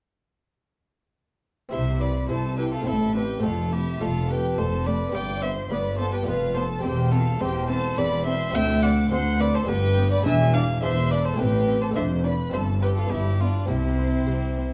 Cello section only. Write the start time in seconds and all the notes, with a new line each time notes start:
1.72 C3
2.30 C3
2.87 A2
3.44 F2
4.02 F2
4.59 F2
5.15 G2
5.71 G2
6.28 F2
6.84 E2
7.40 E2
7.97 E2
8.54 D2
9.11 D2
9.68 G2
10.25 E2
10.82 E2
11.39 A2
11.96 F2
12.53 G2
13.11 G2
13.69 C3
14.27 C3